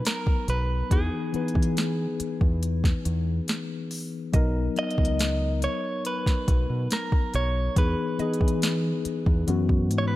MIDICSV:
0, 0, Header, 1, 7, 480
1, 0, Start_track
1, 0, Tempo, 857143
1, 509, Time_signature, 4, 2, 24, 8
1, 5689, End_track
2, 0, Start_track
2, 0, Title_t, "Synth pluck"
2, 0, Program_c, 0, 84
2, 2428, Note_on_c, 0, 75, 62
2, 2979, Note_off_c, 0, 75, 0
2, 4590, Note_on_c, 0, 75, 52
2, 5140, Note_off_c, 0, 75, 0
2, 5689, End_track
3, 0, Start_track
3, 0, Title_t, "Clean electric guitar"
3, 0, Program_c, 1, 27
3, 38, Note_on_c, 1, 70, 98
3, 276, Note_off_c, 1, 70, 0
3, 278, Note_on_c, 1, 71, 93
3, 517, Note_on_c, 1, 68, 90
3, 521, Note_off_c, 1, 71, 0
3, 1931, Note_off_c, 1, 68, 0
3, 2680, Note_on_c, 1, 75, 121
3, 3132, Note_off_c, 1, 75, 0
3, 3158, Note_on_c, 1, 73, 99
3, 3377, Note_off_c, 1, 73, 0
3, 3397, Note_on_c, 1, 71, 99
3, 3879, Note_off_c, 1, 71, 0
3, 3881, Note_on_c, 1, 70, 91
3, 4117, Note_off_c, 1, 70, 0
3, 4119, Note_on_c, 1, 73, 98
3, 4356, Note_off_c, 1, 73, 0
3, 4358, Note_on_c, 1, 71, 93
3, 5567, Note_off_c, 1, 71, 0
3, 5591, Note_on_c, 1, 73, 75
3, 5639, Note_off_c, 1, 73, 0
3, 5643, Note_on_c, 1, 71, 76
3, 5689, Note_off_c, 1, 71, 0
3, 5689, End_track
4, 0, Start_track
4, 0, Title_t, "Tine electric piano"
4, 0, Program_c, 2, 4
4, 0, Control_c, 2, 64, 127
4, 503, Note_on_c, 2, 52, 73
4, 509, Note_on_c, 2, 59, 67
4, 516, Note_on_c, 2, 63, 68
4, 517, Control_c, 2, 64, 0
4, 521, Note_on_c, 2, 68, 83
4, 622, Control_c, 2, 64, 127
4, 676, Note_off_c, 2, 52, 0
4, 678, Note_off_c, 2, 59, 0
4, 682, Note_off_c, 2, 63, 0
4, 685, Note_off_c, 2, 68, 0
4, 743, Note_on_c, 2, 52, 78
4, 749, Note_on_c, 2, 59, 75
4, 755, Note_on_c, 2, 63, 70
4, 761, Note_on_c, 2, 71, 84
4, 1423, Note_off_c, 2, 52, 0
4, 1426, Note_off_c, 2, 59, 0
4, 1430, Note_off_c, 2, 63, 0
4, 1432, Note_off_c, 2, 71, 0
4, 2423, Note_on_c, 2, 54, 91
4, 2429, Note_on_c, 2, 59, 83
4, 2435, Note_on_c, 2, 63, 83
4, 2437, Control_c, 2, 64, 0
4, 2442, Note_on_c, 2, 70, 103
4, 2522, Control_c, 2, 64, 127
4, 2595, Note_off_c, 2, 54, 0
4, 2598, Note_off_c, 2, 59, 0
4, 2602, Note_off_c, 2, 63, 0
4, 2605, Note_off_c, 2, 70, 0
4, 2664, Note_on_c, 2, 54, 80
4, 2671, Note_on_c, 2, 59, 74
4, 2677, Note_on_c, 2, 63, 76
4, 2682, Note_on_c, 2, 70, 85
4, 3344, Note_off_c, 2, 54, 0
4, 3347, Note_off_c, 2, 59, 0
4, 3350, Note_off_c, 2, 63, 0
4, 3353, Note_off_c, 2, 70, 0
4, 4341, Note_on_c, 2, 52, 71
4, 4347, Note_on_c, 2, 59, 70
4, 4353, Note_on_c, 2, 63, 67
4, 4356, Control_c, 2, 64, 0
4, 4361, Note_on_c, 2, 68, 84
4, 4440, Control_c, 2, 64, 127
4, 4514, Note_off_c, 2, 52, 0
4, 4518, Note_off_c, 2, 59, 0
4, 4521, Note_off_c, 2, 63, 0
4, 4524, Note_off_c, 2, 68, 0
4, 4582, Note_on_c, 2, 52, 75
4, 4588, Note_on_c, 2, 59, 72
4, 4594, Note_on_c, 2, 63, 70
4, 4602, Note_on_c, 2, 68, 92
4, 5263, Note_off_c, 2, 52, 0
4, 5266, Note_off_c, 2, 59, 0
4, 5269, Note_off_c, 2, 63, 0
4, 5273, Note_off_c, 2, 68, 0
4, 5302, Note_on_c, 2, 52, 98
4, 5307, Note_on_c, 2, 59, 86
4, 5313, Note_on_c, 2, 61, 89
4, 5315, Control_c, 2, 64, 0
4, 5320, Note_on_c, 2, 66, 99
4, 5410, Control_c, 2, 64, 127
4, 5689, Note_off_c, 2, 52, 0
4, 5689, Note_off_c, 2, 59, 0
4, 5689, Note_off_c, 2, 61, 0
4, 5689, Note_off_c, 2, 66, 0
4, 5689, End_track
5, 0, Start_track
5, 0, Title_t, "Fingered electric bass"
5, 0, Program_c, 3, 33
5, 269, Note_on_c, 3, 35, 95
5, 458, Note_off_c, 3, 35, 0
5, 510, Note_on_c, 3, 40, 106
5, 604, Note_off_c, 3, 40, 0
5, 870, Note_on_c, 3, 52, 106
5, 1153, Note_off_c, 3, 52, 0
5, 1351, Note_on_c, 3, 40, 91
5, 1633, Note_off_c, 3, 40, 0
5, 1712, Note_on_c, 3, 40, 91
5, 1900, Note_off_c, 3, 40, 0
5, 2430, Note_on_c, 3, 35, 104
5, 2618, Note_off_c, 3, 35, 0
5, 2790, Note_on_c, 3, 37, 81
5, 3167, Note_off_c, 3, 37, 0
5, 3629, Note_on_c, 3, 35, 95
5, 3723, Note_off_c, 3, 35, 0
5, 3750, Note_on_c, 3, 47, 99
5, 3844, Note_off_c, 3, 47, 0
5, 4112, Note_on_c, 3, 35, 87
5, 4300, Note_off_c, 3, 35, 0
5, 4349, Note_on_c, 3, 40, 105
5, 4443, Note_off_c, 3, 40, 0
5, 4709, Note_on_c, 3, 52, 92
5, 4992, Note_off_c, 3, 52, 0
5, 5188, Note_on_c, 3, 40, 90
5, 5283, Note_off_c, 3, 40, 0
5, 5309, Note_on_c, 3, 42, 114
5, 5548, Note_off_c, 3, 42, 0
5, 5548, Note_on_c, 3, 44, 91
5, 5689, Note_off_c, 3, 44, 0
5, 5689, End_track
6, 0, Start_track
6, 0, Title_t, "Muted fingered electric bass strokes"
6, 752, Note_on_c, 9, 29, 50
6, 808, Note_off_c, 9, 29, 0
6, 1233, Note_on_c, 9, 29, 50
6, 1289, Note_off_c, 9, 29, 0
6, 4589, Note_on_c, 9, 29, 48
6, 4645, Note_off_c, 9, 29, 0
6, 5071, Note_on_c, 9, 29, 50
6, 5127, Note_off_c, 9, 29, 0
6, 5689, End_track
7, 0, Start_track
7, 0, Title_t, "Drums"
7, 29, Note_on_c, 9, 42, 75
7, 37, Note_on_c, 9, 38, 101
7, 85, Note_off_c, 9, 42, 0
7, 93, Note_off_c, 9, 38, 0
7, 150, Note_on_c, 9, 36, 102
7, 206, Note_off_c, 9, 36, 0
7, 270, Note_on_c, 9, 42, 63
7, 326, Note_off_c, 9, 42, 0
7, 510, Note_on_c, 9, 36, 114
7, 511, Note_on_c, 9, 42, 80
7, 566, Note_off_c, 9, 36, 0
7, 567, Note_off_c, 9, 42, 0
7, 750, Note_on_c, 9, 42, 41
7, 806, Note_off_c, 9, 42, 0
7, 830, Note_on_c, 9, 42, 50
7, 870, Note_on_c, 9, 36, 89
7, 886, Note_off_c, 9, 42, 0
7, 910, Note_on_c, 9, 42, 71
7, 926, Note_off_c, 9, 36, 0
7, 966, Note_off_c, 9, 42, 0
7, 991, Note_on_c, 9, 42, 76
7, 998, Note_on_c, 9, 38, 114
7, 1047, Note_off_c, 9, 42, 0
7, 1054, Note_off_c, 9, 38, 0
7, 1231, Note_on_c, 9, 42, 78
7, 1287, Note_off_c, 9, 42, 0
7, 1350, Note_on_c, 9, 36, 94
7, 1406, Note_off_c, 9, 36, 0
7, 1471, Note_on_c, 9, 42, 86
7, 1527, Note_off_c, 9, 42, 0
7, 1590, Note_on_c, 9, 36, 100
7, 1597, Note_on_c, 9, 38, 73
7, 1646, Note_off_c, 9, 36, 0
7, 1653, Note_off_c, 9, 38, 0
7, 1710, Note_on_c, 9, 42, 73
7, 1766, Note_off_c, 9, 42, 0
7, 1948, Note_on_c, 9, 42, 75
7, 1956, Note_on_c, 9, 38, 102
7, 2004, Note_off_c, 9, 42, 0
7, 2012, Note_off_c, 9, 38, 0
7, 2189, Note_on_c, 9, 46, 68
7, 2245, Note_off_c, 9, 46, 0
7, 2427, Note_on_c, 9, 42, 76
7, 2429, Note_on_c, 9, 36, 114
7, 2483, Note_off_c, 9, 42, 0
7, 2485, Note_off_c, 9, 36, 0
7, 2668, Note_on_c, 9, 42, 39
7, 2724, Note_off_c, 9, 42, 0
7, 2747, Note_on_c, 9, 42, 53
7, 2788, Note_on_c, 9, 36, 98
7, 2803, Note_off_c, 9, 42, 0
7, 2827, Note_on_c, 9, 42, 71
7, 2844, Note_off_c, 9, 36, 0
7, 2883, Note_off_c, 9, 42, 0
7, 2908, Note_on_c, 9, 42, 79
7, 2915, Note_on_c, 9, 38, 122
7, 2964, Note_off_c, 9, 42, 0
7, 2971, Note_off_c, 9, 38, 0
7, 3148, Note_on_c, 9, 42, 81
7, 3204, Note_off_c, 9, 42, 0
7, 3388, Note_on_c, 9, 42, 87
7, 3444, Note_off_c, 9, 42, 0
7, 3508, Note_on_c, 9, 36, 93
7, 3513, Note_on_c, 9, 38, 72
7, 3564, Note_off_c, 9, 36, 0
7, 3569, Note_off_c, 9, 38, 0
7, 3628, Note_on_c, 9, 36, 104
7, 3628, Note_on_c, 9, 42, 78
7, 3684, Note_off_c, 9, 36, 0
7, 3684, Note_off_c, 9, 42, 0
7, 3867, Note_on_c, 9, 42, 78
7, 3875, Note_on_c, 9, 38, 109
7, 3923, Note_off_c, 9, 42, 0
7, 3931, Note_off_c, 9, 38, 0
7, 3988, Note_on_c, 9, 36, 108
7, 4044, Note_off_c, 9, 36, 0
7, 4108, Note_on_c, 9, 42, 56
7, 4164, Note_off_c, 9, 42, 0
7, 4348, Note_on_c, 9, 36, 119
7, 4348, Note_on_c, 9, 42, 80
7, 4404, Note_off_c, 9, 36, 0
7, 4404, Note_off_c, 9, 42, 0
7, 4588, Note_on_c, 9, 42, 39
7, 4644, Note_off_c, 9, 42, 0
7, 4668, Note_on_c, 9, 42, 50
7, 4708, Note_on_c, 9, 36, 95
7, 4724, Note_off_c, 9, 42, 0
7, 4748, Note_on_c, 9, 42, 72
7, 4764, Note_off_c, 9, 36, 0
7, 4804, Note_off_c, 9, 42, 0
7, 4828, Note_on_c, 9, 42, 71
7, 4835, Note_on_c, 9, 38, 115
7, 4884, Note_off_c, 9, 42, 0
7, 4891, Note_off_c, 9, 38, 0
7, 5068, Note_on_c, 9, 42, 82
7, 5124, Note_off_c, 9, 42, 0
7, 5188, Note_on_c, 9, 36, 94
7, 5244, Note_off_c, 9, 36, 0
7, 5307, Note_on_c, 9, 42, 86
7, 5363, Note_off_c, 9, 42, 0
7, 5428, Note_on_c, 9, 36, 94
7, 5484, Note_off_c, 9, 36, 0
7, 5548, Note_on_c, 9, 42, 76
7, 5604, Note_off_c, 9, 42, 0
7, 5689, End_track
0, 0, End_of_file